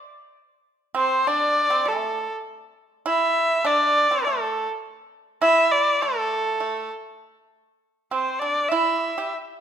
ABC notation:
X:1
M:4/4
L:1/16
Q:1/4=100
K:none
V:1 name="Erhu"
z6 c2 d4 A3 z | z4 e4 d4 A3 z | z4 e2 d2 A6 z2 | z6 c2 d2 e4 z2 |]
V:2 name="Pipa"
z6 C2 D3 C A,3 z | z4 E4 D3 C A,3 z | z4 E4 A,4 A,2 z2 | z6 C2 D2 E3 G z2 |]